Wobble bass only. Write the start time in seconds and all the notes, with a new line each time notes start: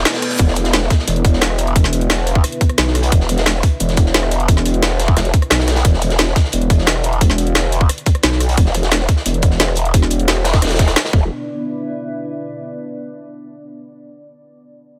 0.39 E1
1.08 E1
2.78 B1
3.12 E1
3.80 E1
5.17 E1
5.51 B1
5.85 E1
6.53 E1
8.23 B1
8.58 E1
9.26 E1
10.62 E1
11.13 E1